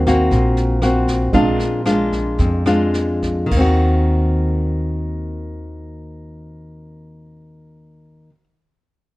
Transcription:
0.00 0.27 D#2 medium
0.00 0.28 D#3 soft
0.00 1.34 F#3 soft
0.00 1.33 C4 soft
0.00 1.34 A#4 medium
0.06 0.78 A#3 medium
0.06 0.78 C4 medium
0.06 0.78 F#4 medium
0.06 kick soft
0.06 cross-stick medium
0.06 snare soft
0.31 1.29 A#1 medium
0.31 1.30 A#2 medium
0.31 kick soft
0.31 snare soft
0.57 snare soft
0.82 1.31 A#3 soft
0.82 1.31 C4 soft
0.82 1.31 F#4 medium
0.82 cross-stick soft
0.82 snare soft
1.07 kick soft
1.07 snare soft
1.32 2.35 A#1 medium
1.32 2.36 A#2 medium
1.32 1.67 G#3 soft
1.32 1.81 G#3 medium
1.32 1.68 C4 soft
1.32 1.68 D4 soft
1.32 1.81 D4 medium
1.32 1.82 F4 medium
1.32 kick medium
1.32 snare soft
1.59 snare soft
1.86 2.62 G#3 soft
1.86 2.62 D4 soft
1.86 2.62 F4 medium
1.86 cross-stick medium
1.86 snare soft
2.12 kick soft
2.12 snare soft
2.38 3.47 F2 medium
2.38 3.48 F2 medium
2.38 kick soft
2.38 snare soft
2.66 3.46 G#3 medium
2.66 3.46 D4 soft
2.66 3.47 F4 medium
2.66 cross-stick medium
2.66 snare soft
2.94 snare soft
3.22 kick soft
3.22 snare soft
3.46 8.29 D#3 soft
3.51 8.30 D#2 medium
3.51 8.35 A#3 soft
3.51 kick medium
3.51 crash soft
3.57 8.40 C4 medium
3.57 8.44 F#4 medium

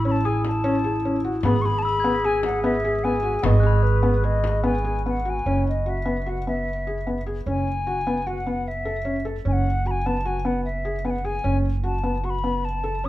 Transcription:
0.00 1.40 A1 medium
0.00 1.46 E4 medium
0.00 0.40 E6 soft
0.05 0.15 C#4 medium
0.05 0.12 B5 medium
0.12 0.27 A5 medium
0.25 0.45 G#4 medium
0.25 0.45 G#5 medium
0.25 0.80 D#6 medium
0.45 1.21 A5 medium
0.45 frame drum soft
0.64 0.74 C#4 medium
0.84 0.94 G#4 medium
1.05 1.15 C#4 medium
1.24 1.34 F#4 medium
1.24 frame drum soft
1.43 3.39 G#1 medium
1.43 1.55 B3 medium
1.43 5.26 G#4 medium
1.43 1.63 B5 loud
1.43 frame drum soft
1.62 1.85 G#4 medium
1.62 1.80 B5 loud
1.62 1.67 C#6 loud
1.79 1.84 A5 loud
1.79 2.27 B5 loud
1.84 2.39 E6 medium
1.84 frame drum soft
2.00 2.51 G#6 soft
2.04 2.14 B3 medium
2.15 2.64 B6 soft
2.24 2.44 G#4 medium
2.24 2.44 G#5 medium
2.43 2.63 F#5 medium
2.43 frame drum soft
2.64 2.74 B3 medium
2.64 3.05 E5 medium
2.85 2.94 G#4 medium
3.04 3.14 B3 medium
3.04 3.44 G#5 medium
3.23 3.33 F#4 medium
3.23 frame drum soft
3.43 5.42 G#1 medium
3.43 3.53 B3 medium
3.43 3.84 D#5 medium
3.43 3.47 F#5 medium
3.43 3.98 C#6 soft
3.43 frame drum medium
3.60 3.83 G#4 medium
3.60 4.12 F#6 soft
3.66 4.20 B5 medium
3.83 4.26 B4 medium
4.03 4.13 B3 medium
4.24 4.44 G#4 medium
4.24 4.64 D#5 medium
4.44 frame drum soft
4.64 4.74 B3 medium
4.64 5.03 G#5 medium
4.85 4.95 G#4 medium
5.06 5.16 B3 medium
5.06 5.31 F#5 medium
5.25 5.36 F#4 medium
5.25 frame drum soft
5.30 5.68 G#5 medium
5.46 7.43 F#1 medium
5.46 5.67 C#4 medium
5.68 5.91 D#5 medium
5.86 5.96 F#4 medium
5.86 6.31 E5 medium
6.05 6.16 B3 medium
6.26 6.37 F#4 medium
6.26 6.48 F#5 medium
6.47 6.67 B3 medium
6.47 7.24 E5 medium
6.87 6.97 G#4 medium
7.07 7.17 B3 medium
7.26 7.37 G#4 medium
7.46 9.41 F#1 medium
7.46 7.67 C#4 medium
7.46 8.28 G#5 medium
7.87 7.97 F#4 medium
8.07 8.17 B3 medium
8.27 8.37 F#4 medium
8.27 8.69 F#5 medium
8.46 8.67 B3 medium
8.68 9.26 E5 medium
8.85 8.96 A4 medium
9.05 9.15 C#4 medium
9.25 9.35 A4 medium
9.45 11.41 F#1 medium
9.45 9.65 C#4 medium
9.45 9.54 G#5 medium
9.53 9.89 F#5 medium
9.85 9.96 F#4 medium
9.85 9.92 B5 medium
9.91 10.08 G#5 medium
10.06 10.16 B3 medium
10.06 10.28 A5 medium
10.25 10.35 F#4 medium
10.25 10.48 G#5 medium
10.45 10.65 B3 medium
10.45 10.64 F#5 medium
10.65 11.07 E5 medium
10.85 10.95 G#4 medium
11.05 11.15 B3 medium
11.05 11.11 G#5 medium
11.10 11.27 F#5 medium
11.24 11.35 G#4 medium
11.24 11.58 G#5 medium
11.44 13.09 F#1 medium
11.44 11.64 C#4 medium
11.83 11.94 F#4 medium
11.83 12.27 A5 medium
12.04 12.14 B3 medium
12.24 12.34 F#4 medium
12.24 12.31 C#6 medium
12.30 12.66 B5 medium
12.44 12.64 B3 medium
12.65 13.07 A5 medium
12.84 12.94 A4 medium
13.04 13.09 C#4 medium
13.04 13.09 D#6 medium

